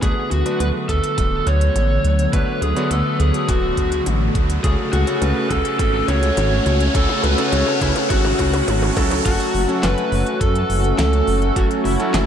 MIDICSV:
0, 0, Header, 1, 8, 480
1, 0, Start_track
1, 0, Key_signature, 3, "minor"
1, 0, Tempo, 576923
1, 20, Time_signature, 4, 2, 24, 8
1, 10203, End_track
2, 0, Start_track
2, 0, Title_t, "Lead electric guitar"
2, 0, Program_c, 0, 29
2, 23, Note_on_c, 0, 68, 95
2, 258, Note_off_c, 0, 68, 0
2, 262, Note_on_c, 0, 66, 80
2, 484, Note_off_c, 0, 66, 0
2, 502, Note_on_c, 0, 71, 96
2, 567, Note_off_c, 0, 71, 0
2, 741, Note_on_c, 0, 69, 91
2, 973, Note_off_c, 0, 69, 0
2, 983, Note_on_c, 0, 69, 100
2, 1223, Note_on_c, 0, 73, 103
2, 1229, Note_off_c, 0, 69, 0
2, 1908, Note_off_c, 0, 73, 0
2, 1942, Note_on_c, 0, 71, 108
2, 2164, Note_off_c, 0, 71, 0
2, 2182, Note_on_c, 0, 68, 87
2, 2417, Note_off_c, 0, 68, 0
2, 2421, Note_on_c, 0, 69, 88
2, 2658, Note_off_c, 0, 69, 0
2, 2662, Note_on_c, 0, 68, 86
2, 2900, Note_on_c, 0, 66, 80
2, 2908, Note_off_c, 0, 68, 0
2, 3347, Note_off_c, 0, 66, 0
2, 3860, Note_on_c, 0, 68, 102
2, 3925, Note_off_c, 0, 68, 0
2, 4100, Note_on_c, 0, 66, 88
2, 4339, Note_on_c, 0, 71, 97
2, 4347, Note_off_c, 0, 66, 0
2, 4574, Note_off_c, 0, 71, 0
2, 4577, Note_on_c, 0, 69, 95
2, 4806, Note_off_c, 0, 69, 0
2, 4816, Note_on_c, 0, 69, 106
2, 5055, Note_on_c, 0, 73, 111
2, 5066, Note_off_c, 0, 69, 0
2, 5776, Note_on_c, 0, 69, 106
2, 5799, Note_off_c, 0, 73, 0
2, 6001, Note_off_c, 0, 69, 0
2, 6018, Note_on_c, 0, 71, 92
2, 6259, Note_on_c, 0, 73, 99
2, 6267, Note_off_c, 0, 71, 0
2, 6483, Note_off_c, 0, 73, 0
2, 6498, Note_on_c, 0, 64, 90
2, 6563, Note_off_c, 0, 64, 0
2, 6741, Note_on_c, 0, 66, 82
2, 7187, Note_off_c, 0, 66, 0
2, 7702, Note_on_c, 0, 66, 106
2, 8182, Note_on_c, 0, 71, 105
2, 8196, Note_off_c, 0, 66, 0
2, 8657, Note_off_c, 0, 71, 0
2, 8661, Note_on_c, 0, 69, 106
2, 9130, Note_off_c, 0, 69, 0
2, 9140, Note_on_c, 0, 69, 104
2, 9620, Note_on_c, 0, 66, 100
2, 9635, Note_off_c, 0, 69, 0
2, 9685, Note_off_c, 0, 66, 0
2, 9860, Note_on_c, 0, 64, 84
2, 10089, Note_off_c, 0, 64, 0
2, 10099, Note_on_c, 0, 64, 90
2, 10203, Note_off_c, 0, 64, 0
2, 10203, End_track
3, 0, Start_track
3, 0, Title_t, "FM electric piano"
3, 0, Program_c, 1, 5
3, 7700, Note_on_c, 1, 66, 103
3, 8181, Note_on_c, 1, 71, 107
3, 8194, Note_off_c, 1, 66, 0
3, 8659, Note_on_c, 1, 69, 103
3, 8675, Note_off_c, 1, 71, 0
3, 9130, Note_off_c, 1, 69, 0
3, 9140, Note_on_c, 1, 69, 103
3, 9619, Note_on_c, 1, 66, 101
3, 9635, Note_off_c, 1, 69, 0
3, 9727, Note_off_c, 1, 66, 0
3, 9860, Note_on_c, 1, 64, 89
3, 10091, Note_off_c, 1, 64, 0
3, 10101, Note_on_c, 1, 64, 87
3, 10203, Note_off_c, 1, 64, 0
3, 10203, End_track
4, 0, Start_track
4, 0, Title_t, "Electric grand piano"
4, 0, Program_c, 2, 2
4, 20, Note_on_c, 2, 50, 72
4, 20, Note_on_c, 2, 57, 66
4, 20, Note_on_c, 2, 59, 65
4, 20, Note_on_c, 2, 62, 65
4, 20, Note_on_c, 2, 66, 63
4, 20, Note_on_c, 2, 71, 80
4, 351, Note_off_c, 2, 50, 0
4, 351, Note_off_c, 2, 57, 0
4, 351, Note_off_c, 2, 62, 0
4, 351, Note_off_c, 2, 66, 0
4, 352, Note_off_c, 2, 59, 0
4, 352, Note_off_c, 2, 71, 0
4, 380, Note_on_c, 2, 50, 76
4, 380, Note_on_c, 2, 66, 72
4, 381, Note_on_c, 2, 57, 71
4, 381, Note_on_c, 2, 59, 69
4, 381, Note_on_c, 2, 62, 73
4, 381, Note_on_c, 2, 71, 86
4, 1911, Note_off_c, 2, 66, 0
4, 1912, Note_off_c, 2, 50, 0
4, 1912, Note_off_c, 2, 57, 0
4, 1912, Note_off_c, 2, 59, 0
4, 1912, Note_off_c, 2, 62, 0
4, 1912, Note_off_c, 2, 71, 0
4, 1940, Note_on_c, 2, 50, 80
4, 1940, Note_on_c, 2, 57, 73
4, 1940, Note_on_c, 2, 59, 75
4, 1940, Note_on_c, 2, 62, 74
4, 1940, Note_on_c, 2, 66, 72
4, 1940, Note_on_c, 2, 71, 90
4, 2271, Note_off_c, 2, 59, 0
4, 2271, Note_off_c, 2, 71, 0
4, 2272, Note_off_c, 2, 50, 0
4, 2272, Note_off_c, 2, 57, 0
4, 2272, Note_off_c, 2, 62, 0
4, 2272, Note_off_c, 2, 66, 0
4, 2300, Note_on_c, 2, 50, 96
4, 2300, Note_on_c, 2, 57, 84
4, 2300, Note_on_c, 2, 59, 86
4, 2300, Note_on_c, 2, 62, 86
4, 2300, Note_on_c, 2, 66, 85
4, 2300, Note_on_c, 2, 71, 100
4, 3831, Note_off_c, 2, 50, 0
4, 3831, Note_off_c, 2, 57, 0
4, 3831, Note_off_c, 2, 59, 0
4, 3831, Note_off_c, 2, 62, 0
4, 3831, Note_off_c, 2, 66, 0
4, 3831, Note_off_c, 2, 71, 0
4, 3860, Note_on_c, 2, 49, 77
4, 3860, Note_on_c, 2, 61, 69
4, 3860, Note_on_c, 2, 66, 70
4, 3860, Note_on_c, 2, 69, 83
4, 4191, Note_off_c, 2, 49, 0
4, 4191, Note_off_c, 2, 61, 0
4, 4191, Note_off_c, 2, 66, 0
4, 4191, Note_off_c, 2, 69, 0
4, 4220, Note_on_c, 2, 49, 80
4, 4220, Note_on_c, 2, 61, 73
4, 4220, Note_on_c, 2, 66, 73
4, 4220, Note_on_c, 2, 69, 91
4, 5751, Note_off_c, 2, 49, 0
4, 5751, Note_off_c, 2, 61, 0
4, 5751, Note_off_c, 2, 66, 0
4, 5752, Note_off_c, 2, 69, 0
4, 5780, Note_on_c, 2, 49, 82
4, 5780, Note_on_c, 2, 61, 74
4, 5780, Note_on_c, 2, 66, 74
4, 5780, Note_on_c, 2, 69, 91
4, 6111, Note_off_c, 2, 61, 0
4, 6111, Note_off_c, 2, 66, 0
4, 6112, Note_off_c, 2, 49, 0
4, 6112, Note_off_c, 2, 69, 0
4, 6140, Note_on_c, 2, 61, 90
4, 6141, Note_on_c, 2, 49, 96
4, 6141, Note_on_c, 2, 66, 89
4, 6141, Note_on_c, 2, 69, 110
4, 7436, Note_off_c, 2, 49, 0
4, 7436, Note_off_c, 2, 61, 0
4, 7437, Note_off_c, 2, 66, 0
4, 7437, Note_off_c, 2, 69, 0
4, 7461, Note_on_c, 2, 54, 98
4, 7461, Note_on_c, 2, 61, 85
4, 7461, Note_on_c, 2, 66, 84
4, 7461, Note_on_c, 2, 69, 106
4, 7672, Note_off_c, 2, 54, 0
4, 7672, Note_off_c, 2, 61, 0
4, 7672, Note_off_c, 2, 66, 0
4, 7672, Note_off_c, 2, 69, 0
4, 7701, Note_on_c, 2, 54, 77
4, 7701, Note_on_c, 2, 61, 69
4, 7701, Note_on_c, 2, 66, 70
4, 7701, Note_on_c, 2, 69, 83
4, 8032, Note_off_c, 2, 54, 0
4, 8032, Note_off_c, 2, 61, 0
4, 8032, Note_off_c, 2, 66, 0
4, 8032, Note_off_c, 2, 69, 0
4, 8060, Note_on_c, 2, 54, 78
4, 8060, Note_on_c, 2, 61, 75
4, 8061, Note_on_c, 2, 66, 74
4, 8061, Note_on_c, 2, 69, 89
4, 9591, Note_off_c, 2, 54, 0
4, 9591, Note_off_c, 2, 61, 0
4, 9592, Note_off_c, 2, 66, 0
4, 9592, Note_off_c, 2, 69, 0
4, 9620, Note_on_c, 2, 61, 77
4, 9620, Note_on_c, 2, 66, 74
4, 9620, Note_on_c, 2, 69, 94
4, 9621, Note_on_c, 2, 54, 83
4, 9951, Note_off_c, 2, 66, 0
4, 9951, Note_off_c, 2, 69, 0
4, 9952, Note_off_c, 2, 54, 0
4, 9952, Note_off_c, 2, 61, 0
4, 9980, Note_on_c, 2, 54, 100
4, 9980, Note_on_c, 2, 61, 89
4, 9981, Note_on_c, 2, 66, 91
4, 9981, Note_on_c, 2, 69, 110
4, 10203, Note_off_c, 2, 54, 0
4, 10203, Note_off_c, 2, 61, 0
4, 10203, Note_off_c, 2, 66, 0
4, 10203, Note_off_c, 2, 69, 0
4, 10203, End_track
5, 0, Start_track
5, 0, Title_t, "Analog synth pad"
5, 0, Program_c, 3, 89
5, 18, Note_on_c, 3, 54, 77
5, 19, Note_on_c, 3, 50, 85
5, 19, Note_on_c, 3, 57, 78
5, 19, Note_on_c, 3, 59, 78
5, 19, Note_on_c, 3, 66, 92
5, 3826, Note_off_c, 3, 50, 0
5, 3826, Note_off_c, 3, 54, 0
5, 3826, Note_off_c, 3, 59, 0
5, 3860, Note_on_c, 3, 61, 77
5, 7666, Note_off_c, 3, 57, 0
5, 7666, Note_off_c, 3, 66, 0
5, 7667, Note_off_c, 3, 61, 0
5, 7701, Note_on_c, 3, 57, 86
5, 7701, Note_on_c, 3, 61, 79
5, 7701, Note_on_c, 3, 66, 96
5, 10203, Note_off_c, 3, 57, 0
5, 10203, Note_off_c, 3, 61, 0
5, 10203, Note_off_c, 3, 66, 0
5, 10203, End_track
6, 0, Start_track
6, 0, Title_t, "Detuned saw bass"
6, 0, Program_c, 4, 39
6, 20, Note_on_c, 4, 38, 95
6, 117, Note_off_c, 4, 38, 0
6, 260, Note_on_c, 4, 38, 104
6, 357, Note_off_c, 4, 38, 0
6, 499, Note_on_c, 4, 38, 94
6, 596, Note_off_c, 4, 38, 0
6, 739, Note_on_c, 4, 38, 99
6, 836, Note_off_c, 4, 38, 0
6, 980, Note_on_c, 4, 26, 96
6, 1173, Note_off_c, 4, 26, 0
6, 1219, Note_on_c, 4, 38, 78
6, 1413, Note_off_c, 4, 38, 0
6, 1459, Note_on_c, 4, 33, 85
6, 1653, Note_off_c, 4, 33, 0
6, 1699, Note_on_c, 4, 38, 101
6, 1892, Note_off_c, 4, 38, 0
6, 1939, Note_on_c, 4, 38, 96
6, 2036, Note_off_c, 4, 38, 0
6, 2179, Note_on_c, 4, 38, 104
6, 2276, Note_off_c, 4, 38, 0
6, 2420, Note_on_c, 4, 38, 93
6, 2516, Note_off_c, 4, 38, 0
6, 2659, Note_on_c, 4, 38, 97
6, 2756, Note_off_c, 4, 38, 0
6, 2900, Note_on_c, 4, 26, 98
6, 3093, Note_off_c, 4, 26, 0
6, 3140, Note_on_c, 4, 38, 81
6, 3333, Note_off_c, 4, 38, 0
6, 3380, Note_on_c, 4, 33, 80
6, 3573, Note_off_c, 4, 33, 0
6, 3620, Note_on_c, 4, 38, 100
6, 3813, Note_off_c, 4, 38, 0
6, 3860, Note_on_c, 4, 37, 97
6, 3957, Note_off_c, 4, 37, 0
6, 4100, Note_on_c, 4, 37, 102
6, 4197, Note_off_c, 4, 37, 0
6, 4339, Note_on_c, 4, 37, 99
6, 4436, Note_off_c, 4, 37, 0
6, 4579, Note_on_c, 4, 37, 100
6, 4676, Note_off_c, 4, 37, 0
6, 4820, Note_on_c, 4, 32, 100
6, 5013, Note_off_c, 4, 32, 0
6, 5060, Note_on_c, 4, 37, 84
6, 5253, Note_off_c, 4, 37, 0
6, 5300, Note_on_c, 4, 32, 80
6, 5493, Note_off_c, 4, 32, 0
6, 5539, Note_on_c, 4, 37, 100
6, 5733, Note_off_c, 4, 37, 0
6, 5780, Note_on_c, 4, 37, 93
6, 5877, Note_off_c, 4, 37, 0
6, 6020, Note_on_c, 4, 37, 102
6, 6117, Note_off_c, 4, 37, 0
6, 6260, Note_on_c, 4, 37, 99
6, 6357, Note_off_c, 4, 37, 0
6, 6501, Note_on_c, 4, 37, 97
6, 6597, Note_off_c, 4, 37, 0
6, 6741, Note_on_c, 4, 32, 97
6, 6934, Note_off_c, 4, 32, 0
6, 6981, Note_on_c, 4, 37, 78
6, 7174, Note_off_c, 4, 37, 0
6, 7220, Note_on_c, 4, 32, 83
6, 7413, Note_off_c, 4, 32, 0
6, 7460, Note_on_c, 4, 37, 104
6, 7653, Note_off_c, 4, 37, 0
6, 7700, Note_on_c, 4, 30, 93
6, 7797, Note_off_c, 4, 30, 0
6, 7940, Note_on_c, 4, 30, 105
6, 8037, Note_off_c, 4, 30, 0
6, 8179, Note_on_c, 4, 30, 97
6, 8276, Note_off_c, 4, 30, 0
6, 8420, Note_on_c, 4, 30, 100
6, 8517, Note_off_c, 4, 30, 0
6, 8660, Note_on_c, 4, 42, 96
6, 8853, Note_off_c, 4, 42, 0
6, 8900, Note_on_c, 4, 30, 80
6, 9093, Note_off_c, 4, 30, 0
6, 9140, Note_on_c, 4, 37, 84
6, 9333, Note_off_c, 4, 37, 0
6, 9380, Note_on_c, 4, 30, 103
6, 9573, Note_off_c, 4, 30, 0
6, 9619, Note_on_c, 4, 30, 97
6, 9716, Note_off_c, 4, 30, 0
6, 9859, Note_on_c, 4, 30, 107
6, 9956, Note_off_c, 4, 30, 0
6, 10099, Note_on_c, 4, 30, 97
6, 10196, Note_off_c, 4, 30, 0
6, 10203, End_track
7, 0, Start_track
7, 0, Title_t, "Riser"
7, 0, Program_c, 5, 103
7, 20, Note_on_c, 5, 60, 73
7, 7700, Note_off_c, 5, 60, 0
7, 10203, End_track
8, 0, Start_track
8, 0, Title_t, "Drums"
8, 20, Note_on_c, 9, 36, 112
8, 21, Note_on_c, 9, 42, 91
8, 21, Note_on_c, 9, 47, 47
8, 103, Note_off_c, 9, 36, 0
8, 104, Note_off_c, 9, 42, 0
8, 104, Note_off_c, 9, 47, 0
8, 261, Note_on_c, 9, 42, 66
8, 344, Note_off_c, 9, 42, 0
8, 381, Note_on_c, 9, 42, 66
8, 464, Note_off_c, 9, 42, 0
8, 501, Note_on_c, 9, 42, 93
8, 501, Note_on_c, 9, 47, 49
8, 585, Note_off_c, 9, 42, 0
8, 585, Note_off_c, 9, 47, 0
8, 740, Note_on_c, 9, 36, 55
8, 741, Note_on_c, 9, 42, 67
8, 823, Note_off_c, 9, 36, 0
8, 824, Note_off_c, 9, 42, 0
8, 861, Note_on_c, 9, 42, 66
8, 944, Note_off_c, 9, 42, 0
8, 980, Note_on_c, 9, 36, 112
8, 981, Note_on_c, 9, 42, 92
8, 981, Note_on_c, 9, 47, 51
8, 1063, Note_off_c, 9, 36, 0
8, 1064, Note_off_c, 9, 42, 0
8, 1064, Note_off_c, 9, 47, 0
8, 1221, Note_on_c, 9, 42, 65
8, 1304, Note_off_c, 9, 42, 0
8, 1341, Note_on_c, 9, 42, 64
8, 1424, Note_off_c, 9, 42, 0
8, 1461, Note_on_c, 9, 42, 99
8, 1461, Note_on_c, 9, 47, 55
8, 1545, Note_off_c, 9, 42, 0
8, 1545, Note_off_c, 9, 47, 0
8, 1701, Note_on_c, 9, 42, 66
8, 1785, Note_off_c, 9, 42, 0
8, 1821, Note_on_c, 9, 42, 66
8, 1904, Note_off_c, 9, 42, 0
8, 1940, Note_on_c, 9, 36, 122
8, 1940, Note_on_c, 9, 42, 94
8, 1940, Note_on_c, 9, 47, 58
8, 2023, Note_off_c, 9, 36, 0
8, 2024, Note_off_c, 9, 42, 0
8, 2024, Note_off_c, 9, 47, 0
8, 2181, Note_on_c, 9, 42, 67
8, 2264, Note_off_c, 9, 42, 0
8, 2300, Note_on_c, 9, 42, 67
8, 2383, Note_off_c, 9, 42, 0
8, 2420, Note_on_c, 9, 42, 94
8, 2420, Note_on_c, 9, 47, 60
8, 2503, Note_off_c, 9, 42, 0
8, 2503, Note_off_c, 9, 47, 0
8, 2660, Note_on_c, 9, 42, 66
8, 2743, Note_off_c, 9, 42, 0
8, 2780, Note_on_c, 9, 42, 66
8, 2864, Note_off_c, 9, 42, 0
8, 2900, Note_on_c, 9, 36, 121
8, 2900, Note_on_c, 9, 42, 95
8, 2900, Note_on_c, 9, 47, 63
8, 2983, Note_off_c, 9, 36, 0
8, 2984, Note_off_c, 9, 42, 0
8, 2984, Note_off_c, 9, 47, 0
8, 3139, Note_on_c, 9, 36, 59
8, 3140, Note_on_c, 9, 42, 67
8, 3223, Note_off_c, 9, 36, 0
8, 3224, Note_off_c, 9, 42, 0
8, 3260, Note_on_c, 9, 42, 68
8, 3343, Note_off_c, 9, 42, 0
8, 3380, Note_on_c, 9, 42, 96
8, 3380, Note_on_c, 9, 47, 71
8, 3464, Note_off_c, 9, 42, 0
8, 3464, Note_off_c, 9, 47, 0
8, 3620, Note_on_c, 9, 36, 108
8, 3621, Note_on_c, 9, 42, 65
8, 3703, Note_off_c, 9, 36, 0
8, 3704, Note_off_c, 9, 42, 0
8, 3741, Note_on_c, 9, 42, 66
8, 3824, Note_off_c, 9, 42, 0
8, 3860, Note_on_c, 9, 36, 118
8, 3861, Note_on_c, 9, 42, 93
8, 3861, Note_on_c, 9, 47, 74
8, 3943, Note_off_c, 9, 36, 0
8, 3944, Note_off_c, 9, 42, 0
8, 3944, Note_off_c, 9, 47, 0
8, 4100, Note_on_c, 9, 42, 67
8, 4100, Note_on_c, 9, 47, 77
8, 4184, Note_off_c, 9, 42, 0
8, 4184, Note_off_c, 9, 47, 0
8, 4220, Note_on_c, 9, 42, 66
8, 4304, Note_off_c, 9, 42, 0
8, 4341, Note_on_c, 9, 42, 92
8, 4341, Note_on_c, 9, 47, 77
8, 4424, Note_off_c, 9, 42, 0
8, 4424, Note_off_c, 9, 47, 0
8, 4580, Note_on_c, 9, 36, 60
8, 4580, Note_on_c, 9, 42, 65
8, 4580, Note_on_c, 9, 47, 76
8, 4663, Note_off_c, 9, 36, 0
8, 4664, Note_off_c, 9, 42, 0
8, 4664, Note_off_c, 9, 47, 0
8, 4701, Note_on_c, 9, 42, 65
8, 4784, Note_off_c, 9, 42, 0
8, 4820, Note_on_c, 9, 36, 126
8, 4821, Note_on_c, 9, 42, 93
8, 4821, Note_on_c, 9, 47, 81
8, 4903, Note_off_c, 9, 36, 0
8, 4904, Note_off_c, 9, 42, 0
8, 4904, Note_off_c, 9, 47, 0
8, 5061, Note_on_c, 9, 42, 66
8, 5061, Note_on_c, 9, 47, 84
8, 5145, Note_off_c, 9, 42, 0
8, 5145, Note_off_c, 9, 47, 0
8, 5181, Note_on_c, 9, 42, 66
8, 5264, Note_off_c, 9, 42, 0
8, 5301, Note_on_c, 9, 42, 98
8, 5301, Note_on_c, 9, 47, 89
8, 5384, Note_off_c, 9, 42, 0
8, 5384, Note_off_c, 9, 47, 0
8, 5541, Note_on_c, 9, 42, 65
8, 5541, Note_on_c, 9, 47, 86
8, 5624, Note_off_c, 9, 42, 0
8, 5624, Note_off_c, 9, 47, 0
8, 5661, Note_on_c, 9, 42, 63
8, 5744, Note_off_c, 9, 42, 0
8, 5780, Note_on_c, 9, 36, 124
8, 5781, Note_on_c, 9, 42, 88
8, 5781, Note_on_c, 9, 47, 89
8, 5863, Note_off_c, 9, 36, 0
8, 5864, Note_off_c, 9, 42, 0
8, 5864, Note_off_c, 9, 47, 0
8, 5901, Note_on_c, 9, 47, 80
8, 5984, Note_off_c, 9, 47, 0
8, 6021, Note_on_c, 9, 42, 64
8, 6021, Note_on_c, 9, 47, 90
8, 6104, Note_off_c, 9, 42, 0
8, 6104, Note_off_c, 9, 47, 0
8, 6141, Note_on_c, 9, 42, 64
8, 6141, Note_on_c, 9, 47, 84
8, 6224, Note_off_c, 9, 42, 0
8, 6224, Note_off_c, 9, 47, 0
8, 6261, Note_on_c, 9, 42, 90
8, 6261, Note_on_c, 9, 47, 97
8, 6344, Note_off_c, 9, 42, 0
8, 6344, Note_off_c, 9, 47, 0
8, 6381, Note_on_c, 9, 47, 84
8, 6464, Note_off_c, 9, 47, 0
8, 6501, Note_on_c, 9, 36, 62
8, 6501, Note_on_c, 9, 42, 64
8, 6501, Note_on_c, 9, 47, 96
8, 6584, Note_off_c, 9, 36, 0
8, 6584, Note_off_c, 9, 42, 0
8, 6584, Note_off_c, 9, 47, 0
8, 6621, Note_on_c, 9, 42, 64
8, 6621, Note_on_c, 9, 47, 87
8, 6704, Note_off_c, 9, 42, 0
8, 6704, Note_off_c, 9, 47, 0
8, 6741, Note_on_c, 9, 36, 125
8, 6741, Note_on_c, 9, 42, 91
8, 6741, Note_on_c, 9, 47, 99
8, 6824, Note_off_c, 9, 36, 0
8, 6824, Note_off_c, 9, 42, 0
8, 6824, Note_off_c, 9, 47, 0
8, 6861, Note_on_c, 9, 47, 91
8, 6945, Note_off_c, 9, 47, 0
8, 6981, Note_on_c, 9, 36, 62
8, 6981, Note_on_c, 9, 42, 65
8, 6981, Note_on_c, 9, 47, 101
8, 7064, Note_off_c, 9, 36, 0
8, 7064, Note_off_c, 9, 42, 0
8, 7064, Note_off_c, 9, 47, 0
8, 7101, Note_on_c, 9, 42, 64
8, 7101, Note_on_c, 9, 47, 92
8, 7184, Note_off_c, 9, 42, 0
8, 7184, Note_off_c, 9, 47, 0
8, 7221, Note_on_c, 9, 42, 95
8, 7221, Note_on_c, 9, 47, 107
8, 7304, Note_off_c, 9, 42, 0
8, 7304, Note_off_c, 9, 47, 0
8, 7341, Note_on_c, 9, 47, 97
8, 7424, Note_off_c, 9, 47, 0
8, 7460, Note_on_c, 9, 36, 108
8, 7461, Note_on_c, 9, 42, 64
8, 7461, Note_on_c, 9, 47, 105
8, 7544, Note_off_c, 9, 36, 0
8, 7544, Note_off_c, 9, 42, 0
8, 7544, Note_off_c, 9, 47, 0
8, 7581, Note_on_c, 9, 42, 64
8, 7581, Note_on_c, 9, 47, 95
8, 7664, Note_off_c, 9, 42, 0
8, 7664, Note_off_c, 9, 47, 0
8, 7700, Note_on_c, 9, 36, 120
8, 7701, Note_on_c, 9, 42, 98
8, 7701, Note_on_c, 9, 49, 107
8, 7784, Note_off_c, 9, 36, 0
8, 7784, Note_off_c, 9, 42, 0
8, 7784, Note_off_c, 9, 49, 0
8, 7821, Note_on_c, 9, 42, 40
8, 7904, Note_off_c, 9, 42, 0
8, 7941, Note_on_c, 9, 46, 79
8, 8025, Note_off_c, 9, 46, 0
8, 8062, Note_on_c, 9, 42, 38
8, 8145, Note_off_c, 9, 42, 0
8, 8180, Note_on_c, 9, 38, 116
8, 8180, Note_on_c, 9, 39, 99
8, 8180, Note_on_c, 9, 42, 97
8, 8264, Note_off_c, 9, 38, 0
8, 8264, Note_off_c, 9, 39, 0
8, 8264, Note_off_c, 9, 42, 0
8, 8301, Note_on_c, 9, 42, 42
8, 8384, Note_off_c, 9, 42, 0
8, 8421, Note_on_c, 9, 46, 79
8, 8504, Note_off_c, 9, 46, 0
8, 8541, Note_on_c, 9, 42, 41
8, 8624, Note_off_c, 9, 42, 0
8, 8660, Note_on_c, 9, 36, 119
8, 8661, Note_on_c, 9, 42, 97
8, 8743, Note_off_c, 9, 36, 0
8, 8744, Note_off_c, 9, 42, 0
8, 8782, Note_on_c, 9, 42, 42
8, 8865, Note_off_c, 9, 42, 0
8, 8901, Note_on_c, 9, 46, 80
8, 8984, Note_off_c, 9, 46, 0
8, 9021, Note_on_c, 9, 42, 42
8, 9104, Note_off_c, 9, 42, 0
8, 9140, Note_on_c, 9, 38, 121
8, 9140, Note_on_c, 9, 39, 99
8, 9140, Note_on_c, 9, 42, 104
8, 9223, Note_off_c, 9, 38, 0
8, 9223, Note_off_c, 9, 39, 0
8, 9223, Note_off_c, 9, 42, 0
8, 9260, Note_on_c, 9, 42, 42
8, 9343, Note_off_c, 9, 42, 0
8, 9380, Note_on_c, 9, 46, 79
8, 9464, Note_off_c, 9, 46, 0
8, 9500, Note_on_c, 9, 42, 40
8, 9584, Note_off_c, 9, 42, 0
8, 9620, Note_on_c, 9, 36, 118
8, 9621, Note_on_c, 9, 42, 98
8, 9703, Note_off_c, 9, 36, 0
8, 9704, Note_off_c, 9, 42, 0
8, 9741, Note_on_c, 9, 42, 41
8, 9824, Note_off_c, 9, 42, 0
8, 9861, Note_on_c, 9, 46, 75
8, 9944, Note_off_c, 9, 46, 0
8, 9981, Note_on_c, 9, 42, 40
8, 10064, Note_off_c, 9, 42, 0
8, 10101, Note_on_c, 9, 38, 120
8, 10101, Note_on_c, 9, 39, 99
8, 10101, Note_on_c, 9, 42, 101
8, 10184, Note_off_c, 9, 38, 0
8, 10184, Note_off_c, 9, 39, 0
8, 10184, Note_off_c, 9, 42, 0
8, 10203, End_track
0, 0, End_of_file